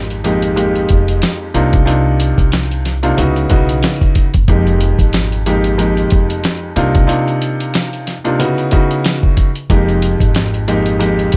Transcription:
Already playing: upright bass G#1, grand piano F2 G#3 A#3 D#4 G4
0.10 closed hi-hat
0.24 grand piano F2 G#3 A#3 D#4 G4, closed hi-hat
0.42 closed hi-hat
0.56 grand piano F2 G#3 A#3 D#4 G4, closed hi-hat
0.75 closed hi-hat
0.89 upright bass F1, kick, closed hi-hat
1.08 closed hi-hat
1.22 snare, closed hi-hat
1.54 upright bass C2, grand piano C3 A#3 D4 D#4 F4, closed hi-hat
1.73 kick, closed hi-hat
1.85 grand piano C3 A#3 D4 D#4 F4, closed hi-hat
2.20 closed hi-hat
2.38 upright bass C2, kick, closed hi-hat
2.52 snare, closed hi-hat
2.71 closed hi-hat
2.85 snare, closed hi-hat
3.03 grand piano C3 A#3 D4 D#4 F4, closed hi-hat
3.17 upright bass C#2, grand piano C#3 B3 D#4 E4 F#4, closed hi-hat
3.36 closed hi-hat
3.49 upright bass B1, grand piano C#3 B3 D#4 E4 F#4, kick, closed hi-hat
3.69 closed hi-hat
3.83 snare, closed hi-hat
4.01 kick, closed hi-hat
4.15 kick, closed hi-hat
4.34 upright bass F#1, kick, closed hi-hat
4.48 upright bass F1, grand piano F2 G#3 A#3 D#4 G4, kick, closed hi-hat
4.67 closed hi-hat
4.80 closed hi-hat
4.99 upright bass G#1, kick, closed hi-hat
5.13 snare, closed hi-hat
5.32 closed hi-hat
5.46 grand piano F2 G#3 A#3 D#4 G4, closed hi-hat
5.64 closed hi-hat
5.78 grand piano F2 G#3 A#3 D#4 G4, closed hi-hat
5.97 closed hi-hat
6.10 upright bass F1, kick, closed hi-hat
6.30 closed hi-hat
6.44 snare, closed hi-hat
6.76 upright bass C2, grand piano C3 A#3 D4 D#4 F4, closed hi-hat
6.95 kick, closed hi-hat
7.07 grand piano C3 A#3 D4 D#4 F4, closed hi-hat
7.28 closed hi-hat
7.42 closed hi-hat
7.60 closed hi-hat
7.74 snare, closed hi-hat
7.93 closed hi-hat
8.07 snare, closed hi-hat
8.24 grand piano C3 A#3 D4 D#4 F4, closed hi-hat
8.39 grand piano C#3 B3 D#4 E4 F#4, closed hi-hat
8.58 closed hi-hat
8.71 grand piano C#3 B3 D#4 E4 F#4, kick, closed hi-hat
8.91 closed hi-hat
9.04 snare, closed hi-hat
9.23 kick
9.37 kick, closed hi-hat
9.55 closed hi-hat
9.70 upright bass F1, grand piano F2 G#3 A#3 D#4 G4, kick, closed hi-hat
9.88 closed hi-hat
10.02 closed hi-hat
10.20 upright bass G#1, kick, closed hi-hat
10.35 snare, closed hi-hat
10.54 closed hi-hat
10.68 grand piano F2 G#3 A#3 D#4 G4, closed hi-hat
10.86 closed hi-hat
10.99 grand piano F2 G#3 A#3 D#4 G4, closed hi-hat
11.19 closed hi-hat
11.32 closed hi-hat

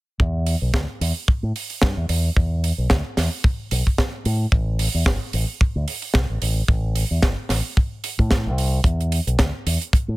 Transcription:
0.20 fingered electric bass E2, kick
0.46 open hi-hat
0.62 fingered electric bass B1
0.74 kick, snare
1.01 fingered electric bass E2, open hi-hat
1.28 muted fingered electric bass stroke, kick
1.43 fingered electric bass A2
1.56 open hi-hat
1.70 open hi-hat
1.82 fingered electric bass G2, kick, snare
1.97 fingered electric bass E2
2.09 fingered electric bass E2, open hi-hat
2.37 fingered electric bass E2, kick
2.64 open hi-hat
2.78 fingered electric bass B1
2.90 fingered electric bass D2, kick, snare
3.17 fingered electric bass E2, snare, open hi-hat
3.44 kick
3.71 fingered electric bass B1, open hi-hat
3.87 kick
3.98 kick, snare
4.25 fingered electric bass A2, open hi-hat
4.52 fingered electric bass A1, kick
4.79 open hi-hat
4.94 fingered electric bass E2
5.06 fingered electric bass G1, kick, snare
5.33 fingered electric bass A1, open hi-hat
5.61 muted fingered electric bass stroke, kick
5.75 fingered electric bass D2
5.88 open hi-hat
6.02 open hi-hat
6.14 fingered electric bass C2, kick, snare
6.30 fingered electric bass A1
6.42 fingered electric bass A1, open hi-hat
6.68 fingered electric bass A1, kick
6.95 open hi-hat
7.11 fingered electric bass E2
7.22 fingered electric bass G1, kick, snare
7.49 fingered electric bass A1, snare, open hi-hat
7.77 kick
8.04 open hi-hat
8.19 fingered electric bass A2, kick
8.31 kick, snare
8.46 fingered electric bass C2
8.58 open hi-hat
8.84 fingered electric bass E2, kick, closed hi-hat
9.00 closed hi-hat
9.12 open hi-hat
9.27 fingered electric bass B1, closed hi-hat
9.39 fingered electric bass D2, kick, snare, closed hi-hat
9.66 fingered electric bass E2, open hi-hat
9.81 closed hi-hat
9.93 muted fingered electric bass stroke, kick, closed hi-hat
10.08 fingered electric bass A2

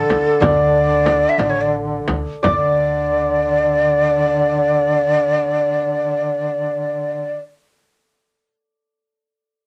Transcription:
Already playing: duduk D3, ney A4, santur A4 D5
0.09 upright bass D2, tombak tek, frame drum
0.40 upright bass D2, santur D5, ney D5, tombak dum, frame drum
0.74 tombak ka
1.06 tombak tek, frame drum
1.29 ney E5
1.38 upright bass A1, ney D5, tombak tek, frame drum
1.50 ney C#5
1.61 ney D5
1.74 tombak ka
2.08 upright bass D2, tombak tek, frame drum
2.43 upright bass D2, santur D5, ney D5, frame drum, tombak dum
2.47 duduk D3

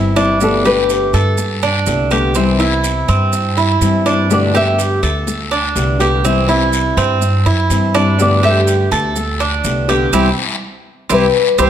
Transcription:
Already playing: upright bass G1, nylon-string guitar E3 G3 C4 E4, cuban tres E4
0.16 nylon-string guitar E3 G3 C4 E4, cuban tres D4, short guiro, maracas
0.40 nylon-string guitar B2 D3 A3 B3 G4 A4, long guiro, maracas
0.65 nylon-string guitar D3 A3 B3 G4 B4, cuban tres G4, maracas
0.89 short guiro, maracas
1.13 upright bass G2, cuban tres A4, short guiro, maracas
1.38 muted nylon-string guitar stroke, long guiro, maracas
1.62 cuban tres D4, maracas
1.86 upright bass C2, nylon-string guitar D3 A3 B3 G4, short guiro, maracas
2.10 nylon-string guitar D3 A3 B3 G4, cuban tres G4, short guiro, maracas
2.35 nylon-string guitar C3 E3 G3 C4 E4, cuban tres C4, long guiro, maracas
2.59 nylon-string guitar E3 G3 C4 E4, cuban tres E4, maracas
2.84 short guiro, maracas
3.08 upright bass G2, cuban tres C4, short guiro, maracas
3.33 muted nylon-string guitar stroke, long guiro, maracas
3.57 cuban tres E4, maracas
3.81 upright bass G2, nylon-string guitar E3 G3 C4 E4, short guiro, maracas
4.05 nylon-string guitar E3 G3 C4 E4, cuban tres D4, short guiro, maracas
4.30 nylon-string guitar B2 D3 A3 B3 G4 D5, long guiro, maracas
4.54 nylon-string guitar D3 A3 B3 G4 E5, cuban tres G4, maracas
4.78 short guiro, maracas
5.02 upright bass D2, cuban tres A4, short guiro, maracas
5.27 muted nylon-string guitar stroke, long guiro, maracas
5.51 cuban tres D4, maracas
5.75 upright bass C2, nylon-string guitar D3 A3 B3 G4, short guiro, maracas
5.99 nylon-string guitar D3 A3 B3 G4, cuban tres G4, short guiro, maracas
6.24 nylon-string guitar C3 E3 G3 C4 E4, cuban tres C4, long guiro, maracas
6.48 nylon-string guitar E3 G3 C4 E4, cuban tres E4, maracas
6.73 short guiro, maracas
6.97 upright bass G2, cuban tres C4, short guiro, maracas
7.21 muted nylon-string guitar stroke, long guiro, maracas
7.46 upright bass F#2, cuban tres E4, maracas
7.70 upright bass G2, nylon-string guitar E3 G3 C4 E4, short guiro, maracas
7.94 nylon-string guitar E3 G3 C4 E4, cuban tres D4, short guiro, maracas
8.18 nylon-string guitar B2 D3 A3 B3 G4 D5, long guiro, maracas
8.43 nylon-string guitar D3 A3 B3 G4 E5, cuban tres G4, maracas
8.67 short guiro, maracas
8.91 upright bass D2, cuban tres A4, short guiro, maracas
9.16 muted nylon-string guitar stroke, long guiro, maracas
9.40 cuban tres D4, maracas
9.64 upright bass C2, nylon-string guitar D3 A3 B3 G4, short guiro, maracas
9.88 nylon-string guitar D3 A3 B3 G4, cuban tres G4, short guiro, maracas
10.13 upright bass C2, nylon-string guitar E3 G3 C4, cuban tres C4 E4 G4, long guiro, maracas
11.10 upright bass C2, nylon-string guitar E3 G3 C4 B4, cuban tres C4 E4 G4, long guiro, maracas
11.58 upright bass C2, nylon-string guitar E3 G3 C4 C5, cuban tres C4 E4 G4, long guiro, maracas

